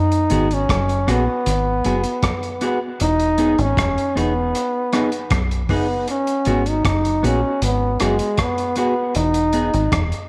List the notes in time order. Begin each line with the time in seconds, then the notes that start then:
Already playing: D#4
0.12 closed hi-hat
0.30 G#1 B3 F#4 G#4, closed hi-hat
0.51 C#4, closed hi-hat
0.69 F#1, kick, cross-stick, closed hi-hat
0.89 closed hi-hat
1.07 A#1 B3 F#4 G#4, cross-stick, closed hi-hat
1.28 muted clean electric guitar stroke
1.46 G#1, closed hi-hat
1.84 F#1 B3 F#4 G#4, closed hi-hat
2.04 muted clean electric guitar stroke, closed hi-hat
2.22 kick, cross-stick, closed hi-hat
2.43 closed hi-hat
2.61 B3 F#4 G#4, closed hi-hat
3.00 E1 D#4, closed hi-hat
3.20 closed hi-hat
3.38 B3 D#4 G#4, closed hi-hat
3.58 G#1 C#4, closed hi-hat
3.77 E1, kick, cross-stick, closed hi-hat
3.98 closed hi-hat
4.15 E1 B3 D#4 G#4, closed hi-hat
4.55 closed hi-hat
4.93 B3 D#4 G#4, cross-stick, closed hi-hat
5.12 closed hi-hat
5.30 B1, kick, cross-stick, closed hi-hat
5.51 closed hi-hat
5.69 F#1 B3 D#4 G#4, kick, open hi-hat
6.08 C#4, closed hi-hat
6.27 closed hi-hat
6.45 G#1 B3 F#4 G#4, closed hi-hat
6.66 D#4, closed hi-hat
6.85 F#1 D#4, kick, cross-stick, closed hi-hat
7.05 closed hi-hat
7.23 A#1 B3 C#4 F#4 G#4, closed hi-hat
7.43 muted clean electric guitar stroke
7.62 G#1 B3, closed hi-hat
8.00 F#1 G#3 B3 F#4 G#4, cross-stick, closed hi-hat
8.19 muted clean electric guitar stroke, closed hi-hat
8.37 B3, kick, cross-stick, closed hi-hat
8.58 closed hi-hat
8.76 B3 F#4 G#4, closed hi-hat
9.15 E1 D#4, closed hi-hat
9.34 closed hi-hat
9.53 B3 D#4 G#4, closed hi-hat
9.73 G#1, closed hi-hat
9.92 E1, kick, cross-stick, closed hi-hat
10.12 closed hi-hat